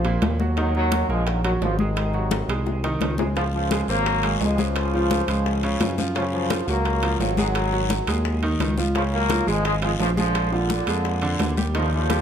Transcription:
Already playing: A#1 C3 F3
0.05 A#2 A#3, high bongo, high conga, high timbale
0.22 D#2, high bongo, low bongo, high conga, high timbale, low timbale
0.40 F#3 F#4, high bongo, high conga
0.57 D#3 F#3 D#4, high bongo, high conga, high timbale
0.75 D#3 F#3, high bongo, high conga
0.91 F#3 F#4, high bongo, high conga, high timbale, low timbale
1.09 A#1 F3 G#3 A#3 A#4, high conga
1.27 D#3 F#3, high bongo, high conga, high timbale
1.44 D#3 F#3 F#4, high bongo, high conga, high timbale
1.61 G#1 C#3 F3, high bongo, low bongo, high conga, low timbale
1.79 C3 D#3 G#3 G#4, high bongo, high conga
1.96 high bongo, high conga, high timbale
2.14 F#3 F#4, high bongo, high conga
2.31 high bongo, high conga, high timbale, low timbale
2.48 C2 G#3 G#4, high conga, high timbale
2.66 low bongo, high conga
2.84 D#3 D#4, low bongo, high conga, high timbale
3.01 C#2, low bongo, high conga, high timbale, low timbale
3.18 G#3 G#4, low bongo, high conga
3.36 C#3 F3 F4, high bongo, high conga, high timbale, long guiro
3.53 C#3 F3, high bongo, high conga
3.71 G#3 G#4, high bongo, high conga, high timbale, low timbale, short guiro
3.88 G#1 F#3 A#3 C4 C5, high conga, short guiro
4.06 high bongo, high conga, high timbale, long guiro
4.23 G#3 G#4, high bongo, high conga, high timbale
4.40 C#2 F3 G#3, high bongo, low bongo, high conga, low timbale, short guiro
4.58 C#3 F3 G#3 G#4, high bongo, high conga, short guiro
4.76 high bongo, high conga, high timbale, long guiro
4.93 F3 F4, high bongo, high conga
5.11 high bongo, high conga, high timbale, low timbale, short guiro
5.28 C#2 G#3 G#4, high conga, high timbale, short guiro
5.46 high bongo, high conga, long guiro
5.63 C#3 C#4, high bongo, high conga, high timbale
5.80 F#2, high bongo, low bongo, high conga, high timbale, low timbale, short guiro
5.98 F3 F4, high bongo, high conga, short guiro
6.15 C#3 F3 C#4, high bongo, high conga, high timbale, long guiro
6.33 C#3 F3, high bongo, high conga
6.50 F3 F4, high bongo, high conga, high timbale, low timbale, short guiro
6.67 C#2 F#3 A#3 F#4, high conga, short guiro
6.85 high bongo, high conga, high timbale, long guiro
7.03 F3 F4, high bongo, high conga, high timbale
7.19 G#1 C#3 F#3, high bongo, low bongo, high conga, low timbale, short guiro
7.37 D#3 F#3 G#3 G#4, high bongo, high conga, short guiro
7.55 high bongo, high conga, high timbale, long guiro
7.73 F#3 F#4, high bongo, high conga
7.90 high bongo, high conga, high timbale, low timbale, short guiro
8.07 D#2 G#3 G#4, high conga, high timbale, short guiro
8.25 high bongo, high conga, long guiro
8.42 D#3 D#4, high bongo, high conga, high timbale
8.59 C#2, high bongo, low bongo, high conga, high timbale, low timbale, short guiro
8.77 F3 F4, high bongo, high conga, short guiro
8.95 C#3 F3 C#4, high bongo, high conga, high timbale, long guiro
9.13 F#3 A#3, high bongo, high conga
9.30 F3 F4, high bongo, high conga, high timbale, low timbale, short guiro
9.47 G#1 F3 G#3 G#4, high conga, short guiro
9.65 F3 G#3, high bongo, high conga, high timbale, long guiro
9.82 F3 G#3 F4, high bongo, high conga, high timbale
9.99 A#1 C#3 F3, high bongo, low bongo, high conga, low timbale, short guiro
10.17 D3 F3 G#3 G#4, high bongo, high conga, short guiro
10.35 high bongo, high conga, high timbale, long guiro
10.52 A#2 D3 F3 F4, high bongo, high conga
10.70 high bongo, high conga, high timbale, low timbale, short guiro
10.87 F2 G#3 G#4, high conga, high timbale, short guiro
11.05 high bongo, high conga, long guiro
11.22 D3 D4, high bongo, high conga, high timbale
11.39 D#2, high bongo, low bongo, high conga, high timbale, low timbale, short guiro
11.57 G3 G4, high bongo, high conga, short guiro
11.75 D3 D#3 F3 D#4, high bongo, high conga, high timbale, long guiro
11.92 D3 F3, high bongo, high conga
12.10 G3 G4, high bongo, high conga, high timbale, low timbale, short guiro

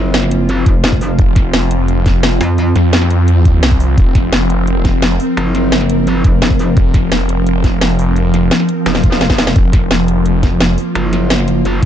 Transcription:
Already playing: F#1 F3 C4 F4
0.14 snare, closed hi-hat
0.23 snare
0.31 closed hi-hat
0.49 closed hi-hat
0.66 F1, kick, closed hi-hat
0.84 snare, closed hi-hat
0.92 kick
1.01 open hi-hat
1.19 F1, kick, closed hi-hat
1.36 kick, snare, closed hi-hat
1.53 F1, snare, closed hi-hat
1.71 closed hi-hat
1.88 closed hi-hat
2.06 kick, snare, closed hi-hat
2.23 snare, closed hi-hat
2.41 F2, open hi-hat
2.58 closed hi-hat
2.76 F2, snare, closed hi-hat
2.93 snare, closed hi-hat
3.02 snare
3.10 closed hi-hat
3.28 closed hi-hat
3.37 E2
3.45 kick, closed hi-hat
3.63 C2, snare, closed hi-hat
3.72 kick
3.80 open hi-hat
3.98 F1 A#4, kick, closed hi-hat
4.15 kick, snare, closed hi-hat
4.33 F1, snare, closed hi-hat
4.50 closed hi-hat
4.67 closed hi-hat
4.85 kick, snare, closed hi-hat
5.02 snare, closed hi-hat
5.20 open hi-hat
5.37 F#1, closed hi-hat
5.55 snare, closed hi-hat
5.72 snare, closed hi-hat
5.81 snare
5.90 closed hi-hat
6.07 closed hi-hat
6.24 F1, kick, closed hi-hat
6.42 snare, closed hi-hat
6.51 kick
6.59 open hi-hat
6.77 F1, kick, closed hi-hat
6.94 kick, snare, closed hi-hat
7.12 F1, snare, closed hi-hat
7.29 closed hi-hat
7.47 closed hi-hat
7.64 kick, snare, closed hi-hat
7.81 snare, closed hi-hat
7.99 F1, open hi-hat
8.16 closed hi-hat
8.34 snare, closed hi-hat
8.51 snare, closed hi-hat
8.60 snare
8.69 closed hi-hat
8.86 F1, snare, closed hi-hat, swell
8.95 snare
9.04 kick, closed hi-hat
9.12 snare
9.21 snare, closed hi-hat
9.30 kick, snare
9.38 F1, snare, open hi-hat
9.47 snare
9.56 F1 A#3 F4, kick, closed hi-hat
9.73 kick, snare, closed hi-hat
9.91 F1, snare, closed hi-hat
10.08 closed hi-hat
10.26 closed hi-hat
10.43 kick, snare, closed hi-hat
10.60 snare, closed hi-hat
10.78 open hi-hat
10.95 F#1, closed hi-hat
11.13 snare, closed hi-hat
11.30 snare, closed hi-hat
11.39 snare
11.48 closed hi-hat
11.65 closed hi-hat

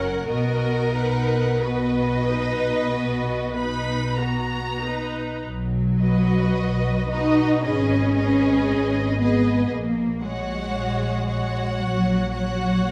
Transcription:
Already playing: F#1 F#2 C#4 A#4 F#5
0.26 B1 B2 B3 F#4 A#4 D#5
0.95 D#4 B4 F#5
1.60 B3 F#4 B4 D#5
2.28 D#4 B4
2.93 B3 F#4
3.56 D#4 B4 B5
4.17 B3 F#4 A#5
4.83 D#4 B4
5.44 B1 F#3
6.00 F#4 B4 D#5
6.57 B1
7.11 D#4 F#4 B4 D#5
7.63 G#1 C#4 G#4 B4 D#5
8.16 G#4 B4 D#5
8.70 G#1
9.19 B3 G#4 B4 D#5
9.71 A#1 A#3
10.22 G#3 F#4 C#5 F#5
10.75 A#1
11.27 F#4 C#5 F#5
11.80 A#1 F#3
12.33 F#4 C#5 F#5
12.85 A#1 A#3

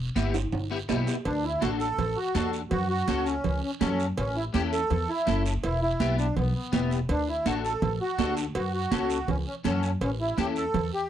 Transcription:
0.16 G1 B3 E4 G4, high conga, high timbale, short guiro
0.34 high timbale, short guiro
0.52 G1, high timbale, long guiro
0.71 B3 E4 G4
0.89 B1 B3 E4 G4, high conga, low timbale, short guiro
1.07 low timbale, short guiro
1.25 D2 D4, cowbell, high conga, long guiro
1.44 E4
1.61 A1 D4 F#4 A4, cowbell, high conga, short guiro
1.80 A4, short guiro
1.98 A1, cowbell, high conga, low conga, long guiro
2.16 F#4
2.35 E2 D4 F#4 A4, cowbell, high conga, low timbale, short guiro
2.53 short guiro
2.71 F#2 F#4, cowbell, high conga, low conga, long guiro
2.89 F#4
3.08 C#2 C#4 F#4 A4, cowbell, high conga, short guiro
3.26 C#4, short guiro
3.44 C#2, cowbell, high conga, low conga, long guiro
3.63 C#4
3.81 F#2 C#4 F#4 A4, cowbell, high conga, low conga, low timbale, short guiro
4.00 short guiro
4.18 A1 C#4, cowbell, high conga, long guiro
4.36 E4
4.54 E2 C#4 E4 G4 A4, cowbell, high conga, short guiro
4.72 A4, short guiro
4.90 E2, cowbell, high conga, low conga, long guiro
5.09 E4
5.26 F#1 C#4 E4 A4, cowbell, high conga, short guiro
5.46 short guiro
5.64 E1 E4, cowbell, high conga, long guiro
5.82 E4
6.00 B1 B3 E4 G4, cowbell, high conga, short guiro
6.18 D4, short guiro
6.36 B1 B3, cowbell, high conga, low conga, long guiro
6.55 B3
6.72 E1 B3 E4 G4, cowbell, high conga, low conga, low timbale, short guiro
6.91 short guiro
7.09 D2 D4, cowbell, high conga, long guiro
7.29 E4
7.46 A1 D4 F#4 A4, cowbell, high conga, short guiro
7.65 A4, short guiro
7.82 A1, cowbell, high conga, low conga, long guiro
8.01 F#4
8.18 D2 D4 F#4 A4, cowbell, high conga, low timbale, short guiro
8.37 short guiro
8.55 F#2 F#4, cowbell, high conga, long guiro
8.74 F#4
8.91 C#2 C#4 F#4 A4, cowbell, high conga, short guiro
9.10 short guiro
9.28 C#2 C#4, cowbell, high conga, low conga, long guiro
9.48 C#4
9.64 F#2 C#4 F#4 A4, cowbell, high conga, low conga, short guiro
9.83 short guiro
10.01 A1 C#4, cowbell, high conga, long guiro
10.21 E4
10.38 E2 C#4 E4 G4 A4, cowbell, high conga, short guiro
10.56 A4, short guiro
10.74 E2, cowbell, high conga, low conga, long guiro
10.94 G4

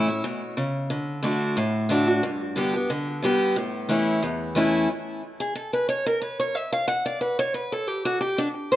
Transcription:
Already playing: A2
0.08 C#4 E4
0.24 B2
0.57 C#3
0.90 D3
1.23 D3 A3 D4 F#4
1.57 A2
1.89 D3 A3 D4 F#4
2.07 D4 F#4
2.23 G2
2.56 D3 G3 B3 G4
2.73 B3 G4
2.90 D3
3.22 D3 G3 B3 G4
3.56 A2
3.89 E3 A3 C#4 E4
4.22 E2
4.55 E3 A3 C#4 E4
5.40 G#4
5.55 A4
5.73 B4
5.89 C#5
6.06 A#4
6.22 B4
6.40 C#5
6.55 E5
6.72 F5
6.88 F#5
7.06 D5
7.21 B4
7.39 C#5
7.54 B4
7.72 A4
7.87 G4
8.05 F#4
8.21 G4
8.38 D4
8.72 C5

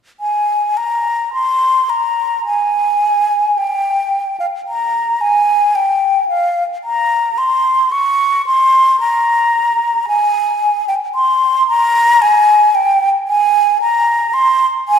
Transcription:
0.20 G#5
0.77 A#5
1.33 C6
1.90 A#5
2.46 G#5
3.58 G5
4.40 F5
4.68 A#5
5.21 G#5
5.75 G5
6.29 F5
6.84 A#5
7.38 C6
7.92 C#6
8.46 C6
9.00 A#5
10.08 G#5
10.88 G5
11.15 C6
11.68 A#5
12.22 G#5
12.75 G5
13.28 G#5
13.81 A#5
14.34 C6
14.88 G#5

